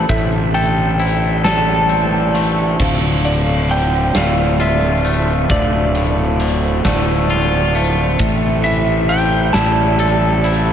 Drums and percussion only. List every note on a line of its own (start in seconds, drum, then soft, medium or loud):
0.09 kick medium
0.09 closed hi-hat medium
0.55 closed hi-hat medium
0.99 closed hi-hat medium
1.44 snare medium
1.44 closed hi-hat medium
1.89 closed hi-hat medium
2.35 closed hi-hat medium
2.80 kick medium
2.80 crash medium
3.25 closed hi-hat medium
3.70 closed hi-hat medium
4.15 snare loud
4.15 closed hi-hat medium
4.60 closed hi-hat medium
5.05 closed hi-hat medium
5.50 kick medium
5.50 closed hi-hat medium
5.95 closed hi-hat medium
6.40 closed hi-hat medium
6.85 kick medium
6.85 snare loud
6.85 closed hi-hat medium
7.30 closed hi-hat medium
7.75 closed hi-hat medium
8.19 kick medium
8.19 closed hi-hat medium
8.64 closed hi-hat medium
9.09 closed hi-hat medium
9.54 snare medium
9.54 closed hi-hat medium
9.99 closed hi-hat medium
10.44 closed hi-hat medium